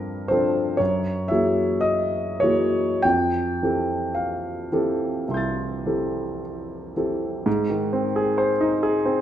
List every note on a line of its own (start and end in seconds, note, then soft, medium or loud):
0.00 0.82 G2 medium
0.00 0.27 F3 soft
0.00 0.27 C4 soft
0.00 0.27 D4 soft
0.00 0.27 A4 soft
0.00 0.29 A#4 medium
0.28 0.76 F3 soft
0.28 0.76 C4 soft
0.28 0.76 D4 soft
0.28 0.76 A4 soft
0.28 0.79 C5 medium
0.77 1.29 F#2 soft
0.77 1.29 C#5 medium
1.28 2.37 E3 soft
1.28 2.37 A#3 soft
1.28 2.38 F#4 soft
1.28 2.38 G#4 soft
1.28 1.82 E5 medium
1.81 2.40 D#5 medium
2.40 3.00 E3 soft
2.40 3.00 A#3 soft
2.40 3.00 F#4 soft
2.40 3.00 G#4 soft
2.40 3.03 C#5 medium
3.02 3.60 F2 soft
3.02 4.15 G5 medium
3.62 4.67 E3 soft
3.62 4.67 C4 soft
3.62 4.68 G4 soft
3.62 4.68 A4 soft
4.15 6.41 F5 medium
4.72 5.24 E3 soft
4.72 5.24 C4 soft
4.72 5.24 G4 soft
4.72 5.25 A4 soft
5.28 5.84 C2 soft
5.28 7.43 E5 soft
5.28 7.44 C6 soft
5.34 7.46 G6 soft
5.34 7.47 A6 soft
5.86 6.92 E3 soft
5.86 6.93 C4 soft
5.86 6.93 G4 soft
5.86 6.93 A4 soft
6.96 7.42 E3 soft
6.96 7.43 C4 soft
6.96 7.43 G4 soft
6.96 7.43 A4 soft
7.46 9.21 G#2 medium
7.70 8.06 D#3 soft
7.93 8.29 C4 soft
8.16 8.51 G#4 soft
8.38 8.73 C5 soft
8.61 8.96 D#4 soft
8.83 9.18 G#4 soft
9.06 9.21 C4 soft